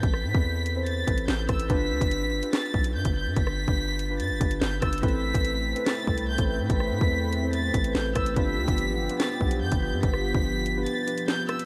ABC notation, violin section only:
X:1
M:4/4
L:1/8
Q:1/4=144
K:Gmix
V:1 name="Violin section"
b'4 a'2 g' e' | b'4 a'2 g' g' | b'4 a'2 g' e' | b'4 a'2 g' g' |
b'4 a'2 g' e' | b'4 a'2 g' g' | b'4 a'2 g' e' |]